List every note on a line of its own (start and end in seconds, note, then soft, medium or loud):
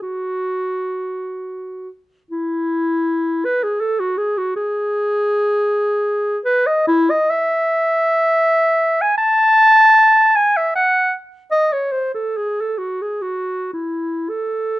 0.02 1.89 F#4 medium
2.31 3.47 E4 medium
3.45 3.65 B4 medium
3.63 3.82 G#4 medium
3.81 4.01 A4 medium
3.99 4.19 F#4 medium
4.17 4.39 G#4 medium
4.38 4.55 F#4 medium
4.56 6.39 G#4 medium
6.45 6.68 B4 medium
6.67 6.87 D#5 medium
6.87 7.12 E4 medium
7.10 7.32 D#5 medium
7.30 9.03 E5 medium
9.01 9.17 G#5 medium
9.18 10.37 A5 loud
10.36 10.58 G#5 medium
10.57 10.74 E5 medium
10.75 11.13 F#5 medium
11.51 11.74 D#5 medium
11.73 11.93 C#5 medium
11.92 12.13 C5 medium
12.14 12.38 A4 medium
12.37 12.62 G#4 medium
12.61 12.80 A4 medium
12.78 13.03 F#4 medium
13.02 13.23 G#4 medium
13.22 13.71 F#4 medium
13.73 14.31 E4 medium
14.29 14.79 A4 medium